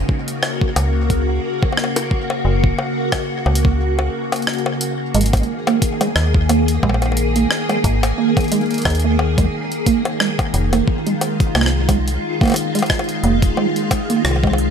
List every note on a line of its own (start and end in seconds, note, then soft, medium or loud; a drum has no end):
0.00 5.11 C#3 medium
0.00 5.11 A#3 medium
0.00 5.11 F#4 medium
0.09 kick loud
0.28 closed hi-hat soft
0.43 cross-stick loud
0.43 high bongo medium
0.61 kick loud
0.76 1.40 C#2 medium
0.76 closed hi-hat medium
0.76 high bongo medium
1.10 kick loud
1.10 closed hi-hat soft
1.63 kick loud
1.63 high bongo soft
1.73 high bongo soft
1.77 cross-stick loud
1.84 high bongo soft
1.96 closed hi-hat medium
1.96 high bongo medium
2.11 kick loud
2.30 high bongo medium
2.45 2.74 F#1 loud
2.64 kick loud
2.79 high bongo medium
3.12 kick medium
3.12 cross-stick loud
3.12 closed hi-hat medium
3.12 high bongo medium
3.46 4.09 C#2 medium
3.46 high bongo medium
3.55 closed hi-hat medium
3.65 kick loud
3.99 high bongo medium
4.32 closed hi-hat soft
4.32 high bongo medium
4.36 closed hi-hat soft
4.42 closed hi-hat soft
4.47 cross-stick loud
4.47 closed hi-hat soft
4.54 closed hi-hat soft
4.58 closed hi-hat soft
4.66 high bongo medium
4.81 closed hi-hat loud
5.14 5.43 G#1 loud
5.14 14.70 D#3 medium
5.14 5.24 G#3 loud
5.14 10.50 A#3 medium
5.14 10.50 G#4 medium
5.14 closed hi-hat medium
5.21 closed hi-hat medium
5.26 closed hi-hat medium
5.33 kick loud
5.33 closed hi-hat medium
5.33 high bongo medium
5.37 closed hi-hat soft
5.43 closed hi-hat soft
5.67 5.80 A#3 medium
5.67 closed hi-hat soft
5.67 high bongo medium
5.82 kick loud
5.82 closed hi-hat medium
6.01 6.08 G#3 loud
6.01 closed hi-hat medium
6.01 high bongo medium
6.16 6.79 D#2 medium
6.16 cross-stick loud
6.34 kick loud
6.49 6.65 A#3 medium
6.49 closed hi-hat medium
6.49 high bongo medium
6.68 closed hi-hat medium
6.83 7.46 A#1 loud
6.83 6.93 G#3 loud
6.83 kick loud
6.83 high bongo medium
6.89 high bongo medium
6.94 high bongo medium
7.02 closed hi-hat soft
7.02 high bongo soft
7.06 high bongo soft
7.12 high bongo soft
7.17 closed hi-hat medium
7.36 7.48 A#3 medium
7.36 closed hi-hat medium
7.51 cross-stick loud
7.69 7.77 G#3 loud
7.69 closed hi-hat soft
7.69 high bongo medium
7.84 8.13 G#1 loud
7.84 kick loud
7.84 closed hi-hat medium
8.03 closed hi-hat medium
8.03 high bongo medium
8.18 8.34 A#3 medium
8.37 kick loud
8.37 closed hi-hat soft
8.37 high bongo medium
8.41 closed hi-hat soft
8.44 closed hi-hat soft
8.48 8.61 G#3 loud
8.48 closed hi-hat soft
8.52 closed hi-hat medium
8.61 closed hi-hat soft
8.66 closed hi-hat soft
8.71 closed hi-hat soft
8.74 closed hi-hat soft
8.78 closed hi-hat soft
8.82 9.49 D#2 medium
8.82 kick loud
8.82 cross-stick loud
8.82 closed hi-hat soft
8.85 closed hi-hat soft
8.85 high bongo medium
8.90 closed hi-hat soft
8.95 closed hi-hat soft
9.00 closed hi-hat medium
9.04 9.17 A#3 medium
9.19 high bongo medium
9.38 9.45 G#3 loud
9.38 kick loud
9.38 closed hi-hat medium
9.72 closed hi-hat soft
9.86 10.02 A#3 medium
9.86 kick loud
9.86 closed hi-hat medium
10.05 closed hi-hat medium
10.05 high bongo medium
10.20 10.30 G#3 loud
10.20 cross-stick loud
10.39 kick loud
10.39 closed hi-hat soft
10.39 high bongo medium
10.54 10.83 F1 loud
10.54 14.70 G#3 medium
10.54 14.70 F4 medium
10.54 closed hi-hat medium
10.73 10.85 A#3 medium
10.73 closed hi-hat medium
10.73 high bongo medium
10.88 kick loud
11.06 11.14 G#3 loud
11.06 closed hi-hat soft
11.21 closed hi-hat medium
11.21 high bongo medium
11.40 kick loud
11.40 closed hi-hat medium
11.55 12.18 C2 medium
11.55 11.71 A#3 medium
11.55 cross-stick loud
11.55 high bongo medium
11.61 cross-stick loud
11.66 cross-stick medium
11.89 11.98 G#3 loud
11.89 kick loud
11.89 closed hi-hat medium
11.89 high bongo soft
12.08 closed hi-hat medium
12.41 12.54 A#3 medium
12.41 kick loud
12.41 closed hi-hat soft
12.41 high bongo soft
12.43 closed hi-hat soft
12.43 high bongo soft
12.45 closed hi-hat soft
12.45 high bongo soft
12.48 closed hi-hat soft
12.48 high bongo soft
12.50 closed hi-hat soft
12.50 high bongo soft
12.52 closed hi-hat soft
12.52 high bongo soft
12.54 closed hi-hat soft
12.54 high bongo soft
12.56 closed hi-hat medium
12.75 12.82 G#3 loud
12.75 closed hi-hat medium
12.79 closed hi-hat soft
12.82 closed hi-hat soft
12.82 high bongo medium
12.86 kick loud
12.86 cross-stick loud
12.86 closed hi-hat soft
12.90 closed hi-hat soft
12.95 closed hi-hat soft
12.99 closed hi-hat soft
12.99 high bongo medium
13.04 closed hi-hat soft
13.09 closed hi-hat soft
13.24 13.52 F1 medium
13.24 13.39 A#3 medium
13.24 closed hi-hat medium
13.42 kick loud
13.42 closed hi-hat medium
13.57 13.67 G#3 loud
13.57 high bongo soft
13.76 closed hi-hat soft
13.91 kick loud
13.91 closed hi-hat medium
13.91 high bongo medium
14.10 14.22 A#3 medium
14.10 closed hi-hat medium
14.25 14.70 C2 medium
14.25 cross-stick loud
14.25 high bongo soft
14.31 high bongo soft
14.36 high bongo soft
14.44 14.51 G#3 loud
14.44 kick loud
14.44 high bongo soft
14.47 high bongo soft
14.53 high bongo soft
14.58 closed hi-hat medium